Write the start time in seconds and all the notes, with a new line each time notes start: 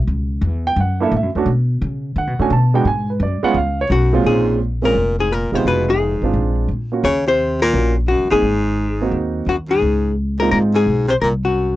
0.07 C#2
0.41 E2
0.67 G5
0.76 F#2
0.80 F#5
1.00 A#3 D4 E4 A4 E5
1.11 A2
1.17 E5
1.23 F#2
1.35 E2 A3 C#4 D4 F#4
1.46 B2
1.81 C#3
2.16 D3 F#5
2.27 B2
2.39 A2 A3 C#4 D4 F#4 G#5
2.50 B2 A5
2.74 G#3 B3 D4 F#4 G5
2.85 G#2 G#5
3.10 B4
3.20 F#2 D5
3.43 G#3 B3 C#4 F4 F#5, muted upright bass stroke
3.54 C#2 F5
3.81 C#5
3.90 B1 F#2 F#4
4.13 A#2 G#3 C4 C#4 F4
4.24 A#1 G#2 G#4
4.82 A#2 G#3 C4 C#4 F4 A#4
4.94 F1
5.18 G#2 G#4
5.31 A#2 A#4
5.52 E1 C3 G#3 B3 D#4 F4 C5
5.65 F1 B2 B4
5.88 G#2 G#4
6.22 G#1 G#3 C4 D4 F4
6.34 A#1
6.68 A#2
6.92 A#3 C#4 F4 F#4
7.03 D#2 C#3 C#5
7.27 C3 C5
7.62 A#2 A#4
7.73 A#1 A#3 C#4 F4 F#4
8.08 F#2 F#4
8.20 C#2
8.30 G1 G#2 A#3 C4 D#4 G#4
8.42 G#1
9.01 A#3 C4 D#4 F#4
9.11 D#2
9.46 D#2 F#2 F#4
9.69 G#2 G#4
9.82 C#2
10.40 A#2 G#3 C4 D#4 F4 A#4
10.51 G#2 A#2 A#4
10.74 G#2 G#4
10.87 B1
11.08 C3 C5
11.21 C2 A#2 A#4
11.45 F#2 F#4